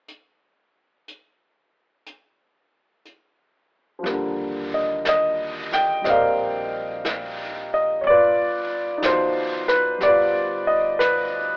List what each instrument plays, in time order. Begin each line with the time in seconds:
0.08 closed hi-hat
1.08 closed hi-hat
2.06 closed hi-hat
3.05 closed hi-hat
3.99 grand piano F3 G3
4.04 upright bass D#2, grand piano A#3, brush sweep, snare
4.10 grand piano D3
4.74 grand piano D#5
5.05 grand piano D#5, brush sweep, snare, hi-hat pedal
5.72 grand piano G5, snare
6.02 upright bass A#1, grand piano G3 D#5, brush sweep, snare
6.06 grand piano C4 F5
6.10 grand piano A#4 D5
7.05 brush sweep, snare, hi-hat pedal
7.74 grand piano D#5
8.01 upright bass G1, grand piano C#5, brush sweep
8.07 grand piano F4 B4 D5
8.98 grand piano F3 D#4
9.02 grand piano B2 C5, brush sweep, snare, hi-hat pedal
9.08 grand piano F4
9.68 grand piano B4, muted upright bass stroke, snare
9.98 upright bass D2, grand piano G3 B3, brush sweep, snare
10.03 grand piano F4 B4 D5
10.67 grand piano D#5
10.99 grand piano B4, brush sweep, snare, hi-hat pedal